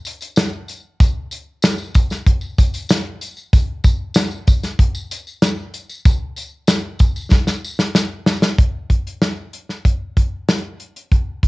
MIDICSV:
0, 0, Header, 1, 2, 480
1, 0, Start_track
1, 0, Tempo, 632244
1, 762, Time_signature, 4, 2, 24, 8
1, 8715, End_track
2, 0, Start_track
2, 0, Title_t, "Drums"
2, 38, Note_on_c, 9, 54, 51
2, 50, Note_on_c, 9, 42, 76
2, 114, Note_off_c, 9, 54, 0
2, 126, Note_off_c, 9, 42, 0
2, 158, Note_on_c, 9, 54, 34
2, 166, Note_on_c, 9, 42, 53
2, 234, Note_off_c, 9, 54, 0
2, 242, Note_off_c, 9, 42, 0
2, 275, Note_on_c, 9, 54, 76
2, 283, Note_on_c, 9, 42, 96
2, 284, Note_on_c, 9, 38, 110
2, 351, Note_off_c, 9, 54, 0
2, 359, Note_off_c, 9, 42, 0
2, 360, Note_off_c, 9, 38, 0
2, 519, Note_on_c, 9, 54, 46
2, 526, Note_on_c, 9, 42, 58
2, 595, Note_off_c, 9, 54, 0
2, 602, Note_off_c, 9, 42, 0
2, 762, Note_on_c, 9, 36, 102
2, 765, Note_on_c, 9, 42, 77
2, 765, Note_on_c, 9, 54, 40
2, 838, Note_off_c, 9, 36, 0
2, 840, Note_off_c, 9, 42, 0
2, 841, Note_off_c, 9, 54, 0
2, 997, Note_on_c, 9, 54, 51
2, 1005, Note_on_c, 9, 42, 61
2, 1073, Note_off_c, 9, 54, 0
2, 1081, Note_off_c, 9, 42, 0
2, 1233, Note_on_c, 9, 54, 86
2, 1244, Note_on_c, 9, 38, 101
2, 1245, Note_on_c, 9, 42, 84
2, 1309, Note_off_c, 9, 54, 0
2, 1320, Note_off_c, 9, 38, 0
2, 1321, Note_off_c, 9, 42, 0
2, 1353, Note_on_c, 9, 54, 31
2, 1429, Note_off_c, 9, 54, 0
2, 1477, Note_on_c, 9, 54, 51
2, 1480, Note_on_c, 9, 42, 77
2, 1482, Note_on_c, 9, 36, 93
2, 1552, Note_off_c, 9, 54, 0
2, 1556, Note_off_c, 9, 42, 0
2, 1558, Note_off_c, 9, 36, 0
2, 1596, Note_on_c, 9, 54, 31
2, 1603, Note_on_c, 9, 38, 35
2, 1672, Note_off_c, 9, 54, 0
2, 1679, Note_off_c, 9, 38, 0
2, 1720, Note_on_c, 9, 36, 89
2, 1723, Note_on_c, 9, 42, 90
2, 1796, Note_off_c, 9, 36, 0
2, 1799, Note_off_c, 9, 42, 0
2, 1831, Note_on_c, 9, 54, 51
2, 1907, Note_off_c, 9, 54, 0
2, 1961, Note_on_c, 9, 54, 52
2, 1962, Note_on_c, 9, 36, 83
2, 1967, Note_on_c, 9, 42, 75
2, 2037, Note_off_c, 9, 54, 0
2, 2038, Note_off_c, 9, 36, 0
2, 2043, Note_off_c, 9, 42, 0
2, 2079, Note_on_c, 9, 54, 34
2, 2084, Note_on_c, 9, 42, 52
2, 2155, Note_off_c, 9, 54, 0
2, 2160, Note_off_c, 9, 42, 0
2, 2196, Note_on_c, 9, 54, 84
2, 2205, Note_on_c, 9, 42, 88
2, 2206, Note_on_c, 9, 38, 120
2, 2272, Note_off_c, 9, 54, 0
2, 2281, Note_off_c, 9, 42, 0
2, 2282, Note_off_c, 9, 38, 0
2, 2439, Note_on_c, 9, 54, 46
2, 2443, Note_on_c, 9, 42, 54
2, 2515, Note_off_c, 9, 54, 0
2, 2519, Note_off_c, 9, 42, 0
2, 2558, Note_on_c, 9, 54, 31
2, 2634, Note_off_c, 9, 54, 0
2, 2680, Note_on_c, 9, 36, 105
2, 2681, Note_on_c, 9, 42, 77
2, 2681, Note_on_c, 9, 54, 39
2, 2756, Note_off_c, 9, 36, 0
2, 2757, Note_off_c, 9, 42, 0
2, 2757, Note_off_c, 9, 54, 0
2, 2915, Note_on_c, 9, 54, 52
2, 2919, Note_on_c, 9, 36, 84
2, 2923, Note_on_c, 9, 42, 59
2, 2991, Note_off_c, 9, 54, 0
2, 2995, Note_off_c, 9, 36, 0
2, 2999, Note_off_c, 9, 42, 0
2, 3146, Note_on_c, 9, 54, 83
2, 3158, Note_on_c, 9, 38, 107
2, 3159, Note_on_c, 9, 42, 88
2, 3222, Note_off_c, 9, 54, 0
2, 3234, Note_off_c, 9, 38, 0
2, 3235, Note_off_c, 9, 42, 0
2, 3272, Note_on_c, 9, 54, 32
2, 3348, Note_off_c, 9, 54, 0
2, 3395, Note_on_c, 9, 42, 72
2, 3399, Note_on_c, 9, 36, 89
2, 3399, Note_on_c, 9, 54, 56
2, 3471, Note_off_c, 9, 42, 0
2, 3475, Note_off_c, 9, 36, 0
2, 3475, Note_off_c, 9, 54, 0
2, 3518, Note_on_c, 9, 54, 33
2, 3519, Note_on_c, 9, 38, 36
2, 3520, Note_on_c, 9, 42, 44
2, 3594, Note_off_c, 9, 54, 0
2, 3595, Note_off_c, 9, 38, 0
2, 3596, Note_off_c, 9, 42, 0
2, 3637, Note_on_c, 9, 36, 85
2, 3641, Note_on_c, 9, 42, 88
2, 3713, Note_off_c, 9, 36, 0
2, 3717, Note_off_c, 9, 42, 0
2, 3756, Note_on_c, 9, 54, 50
2, 3832, Note_off_c, 9, 54, 0
2, 3881, Note_on_c, 9, 54, 53
2, 3883, Note_on_c, 9, 42, 75
2, 3957, Note_off_c, 9, 54, 0
2, 3959, Note_off_c, 9, 42, 0
2, 4000, Note_on_c, 9, 54, 33
2, 4076, Note_off_c, 9, 54, 0
2, 4115, Note_on_c, 9, 42, 92
2, 4116, Note_on_c, 9, 38, 110
2, 4118, Note_on_c, 9, 54, 77
2, 4190, Note_off_c, 9, 42, 0
2, 4192, Note_off_c, 9, 38, 0
2, 4194, Note_off_c, 9, 54, 0
2, 4356, Note_on_c, 9, 42, 60
2, 4357, Note_on_c, 9, 54, 44
2, 4432, Note_off_c, 9, 42, 0
2, 4433, Note_off_c, 9, 54, 0
2, 4475, Note_on_c, 9, 54, 35
2, 4551, Note_off_c, 9, 54, 0
2, 4596, Note_on_c, 9, 42, 73
2, 4597, Note_on_c, 9, 36, 109
2, 4603, Note_on_c, 9, 54, 42
2, 4672, Note_off_c, 9, 36, 0
2, 4672, Note_off_c, 9, 42, 0
2, 4678, Note_off_c, 9, 54, 0
2, 4832, Note_on_c, 9, 54, 52
2, 4839, Note_on_c, 9, 42, 64
2, 4908, Note_off_c, 9, 54, 0
2, 4915, Note_off_c, 9, 42, 0
2, 5067, Note_on_c, 9, 54, 85
2, 5072, Note_on_c, 9, 38, 101
2, 5072, Note_on_c, 9, 42, 88
2, 5143, Note_off_c, 9, 54, 0
2, 5148, Note_off_c, 9, 38, 0
2, 5148, Note_off_c, 9, 42, 0
2, 5308, Note_on_c, 9, 54, 51
2, 5309, Note_on_c, 9, 42, 70
2, 5316, Note_on_c, 9, 36, 88
2, 5384, Note_off_c, 9, 54, 0
2, 5385, Note_off_c, 9, 42, 0
2, 5391, Note_off_c, 9, 36, 0
2, 5436, Note_on_c, 9, 54, 33
2, 5512, Note_off_c, 9, 54, 0
2, 5553, Note_on_c, 9, 36, 90
2, 5553, Note_on_c, 9, 38, 56
2, 5629, Note_off_c, 9, 36, 0
2, 5629, Note_off_c, 9, 38, 0
2, 5671, Note_on_c, 9, 38, 52
2, 5674, Note_on_c, 9, 54, 53
2, 5747, Note_off_c, 9, 38, 0
2, 5750, Note_off_c, 9, 54, 0
2, 5803, Note_on_c, 9, 54, 53
2, 5879, Note_off_c, 9, 54, 0
2, 5913, Note_on_c, 9, 38, 63
2, 5920, Note_on_c, 9, 54, 33
2, 5989, Note_off_c, 9, 38, 0
2, 5996, Note_off_c, 9, 54, 0
2, 6034, Note_on_c, 9, 38, 88
2, 6040, Note_on_c, 9, 54, 84
2, 6110, Note_off_c, 9, 38, 0
2, 6116, Note_off_c, 9, 54, 0
2, 6273, Note_on_c, 9, 38, 91
2, 6284, Note_on_c, 9, 54, 44
2, 6349, Note_off_c, 9, 38, 0
2, 6360, Note_off_c, 9, 54, 0
2, 6393, Note_on_c, 9, 38, 87
2, 6469, Note_off_c, 9, 38, 0
2, 6517, Note_on_c, 9, 36, 91
2, 6517, Note_on_c, 9, 42, 66
2, 6593, Note_off_c, 9, 36, 0
2, 6593, Note_off_c, 9, 42, 0
2, 6756, Note_on_c, 9, 36, 66
2, 6760, Note_on_c, 9, 42, 53
2, 6832, Note_off_c, 9, 36, 0
2, 6836, Note_off_c, 9, 42, 0
2, 6885, Note_on_c, 9, 42, 45
2, 6961, Note_off_c, 9, 42, 0
2, 6997, Note_on_c, 9, 38, 88
2, 6997, Note_on_c, 9, 42, 71
2, 7072, Note_off_c, 9, 38, 0
2, 7073, Note_off_c, 9, 42, 0
2, 7235, Note_on_c, 9, 42, 63
2, 7311, Note_off_c, 9, 42, 0
2, 7357, Note_on_c, 9, 38, 29
2, 7433, Note_off_c, 9, 38, 0
2, 7476, Note_on_c, 9, 36, 79
2, 7477, Note_on_c, 9, 42, 77
2, 7552, Note_off_c, 9, 36, 0
2, 7553, Note_off_c, 9, 42, 0
2, 7719, Note_on_c, 9, 36, 71
2, 7720, Note_on_c, 9, 42, 70
2, 7795, Note_off_c, 9, 36, 0
2, 7796, Note_off_c, 9, 42, 0
2, 7961, Note_on_c, 9, 42, 87
2, 7962, Note_on_c, 9, 38, 105
2, 8037, Note_off_c, 9, 42, 0
2, 8038, Note_off_c, 9, 38, 0
2, 8198, Note_on_c, 9, 42, 53
2, 8274, Note_off_c, 9, 42, 0
2, 8323, Note_on_c, 9, 42, 47
2, 8399, Note_off_c, 9, 42, 0
2, 8440, Note_on_c, 9, 36, 86
2, 8440, Note_on_c, 9, 42, 64
2, 8516, Note_off_c, 9, 36, 0
2, 8516, Note_off_c, 9, 42, 0
2, 8678, Note_on_c, 9, 36, 71
2, 8683, Note_on_c, 9, 42, 56
2, 8715, Note_off_c, 9, 36, 0
2, 8715, Note_off_c, 9, 42, 0
2, 8715, End_track
0, 0, End_of_file